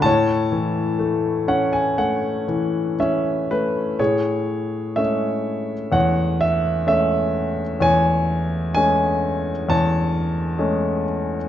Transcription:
0.02 A2 C#5 A5
0.52 E3
0.99 A3
1.48 C#4 F#5
1.73 G#5
1.98 A3 F#5
2.48 E3
3.00 C#4 E5
3.51 A3 B4
3.99 A2 G#4 C#5
4.96 G#3 A3 C#4 E5
5.92 E2 C#5 F#5
6.41 E5
6.86 G#3 A3 C#4 E5
7.80 E2 C#5 G#5
8.75 G#3 A3 C#4 G#5
9.69 E2 C#5 A5
10.59 G#3 A3 C#4

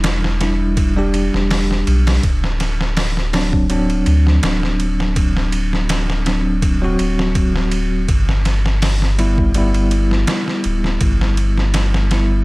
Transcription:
Already playing: E1 G3 D4 E4
0.04 snare, ride
0.24 snare
0.40 G3 D4 E4, snare, ride
0.77 kick, ride
0.96 G3 D4 G4
1.14 ride
1.34 E1, snare
1.51 snare, open hi-hat
1.71 snare
1.87 B1, ride
2.07 snare, open hi-hat
2.23 D1, kick, ride
2.44 snare
2.60 snare, ride
2.81 snare
2.97 snare, open hi-hat
3.17 snare
3.33 F#3 C4 D4, snare, open hi-hat
3.53 kick
3.69 F#3 C4 D4, ride
3.90 ride
4.06 D2, ride
4.27 snare
4.43 D1, snare, ride
4.63 snare
4.80 ride
5.00 snare
5.16 kick, ride
5.37 snare
5.52 ride
5.73 snare
5.89 snare, ride
6.10 snare
6.26 F#3 C4 D4, snare, ride
6.62 kick, ride
6.82 F#3 C4 F#4
6.99 D1, ride
7.19 snare
7.35 kick, ride
7.56 snare
7.71 ride
8.09 G1, kick, ride
8.29 snare
8.45 snare, ride
8.66 snare
8.82 snare, open hi-hat
9.02 snare
9.19 G3 B3 E4, ride
9.38 kick
9.54 G3 B3 E4, ride
9.74 ride
9.91 ride
10.11 snare
10.27 snare, ride
10.48 snare
10.64 D1, ride
10.84 snare
11.01 G1, kick, ride
11.21 snare
11.37 ride
11.58 snare
11.74 snare, ride
11.94 snare
12.11 G3 B3 E4, snare, ride

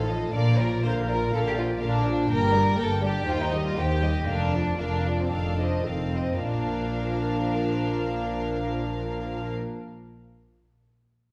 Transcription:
Already playing: A1 A2 A4
0.09 F3 A4 D#5
0.33 A#1 A#2 D3 A#4 D5 F5
0.58 F3 F4 A#4 D5
0.83 A#1 A#2 D3 A#4 C5 F5
1.09 F3 F4 A#4 D5
1.31 A#1 A#2 D3 A4 A#4 F5
1.47 G4
1.56 F3 F4 D5
1.79 A#1 A#2 D3 D4 A#4 F5
2.04 F3 F4 D5
2.29 G1 G2 A#3 A#4 G5
2.53 G3 G4 D5
2.77 G1 G2 A#3 A4 A#4 G5
3.02 G3 G4 D5
3.26 D#2 D#3 F4 C5 G5
3.41 D#4
3.52 G3 G4 D#5
3.66 F4
3.77 D#2 D#3 G4 C5 G5
4.02 G3 G4 D#5
4.27 F1 F2 D3 D4 A#4 F5
4.53 F3 F4 D5
4.78 F1 F2 D3 D4 A#4 F5
5.05 F3 F4 D5
5.20 C4
5.30 F1 F2 D#3 D4 A4 F5
5.59 F3 C5 D#5
5.86 F1 F2 D#3 C4 A4 F5
6.14 F3 C5 D#5
6.42 A#1 A#2 F3 D4 A#4 F5

